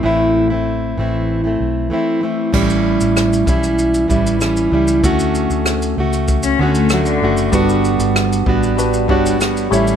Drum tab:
CC |----------------|x---------------|----------------|----------------|
SH |----------------|-x-xxxxxxxxxxx-x|xxxxxx-xxx-xxx-x|xxxxxx-xxx-xxxxx|
SD |----------------|----r--r----r---|----r--r----r---|----r-------r---|
BD |----------------|o-----o---o-----|o-------o-------|o-----o---o-----|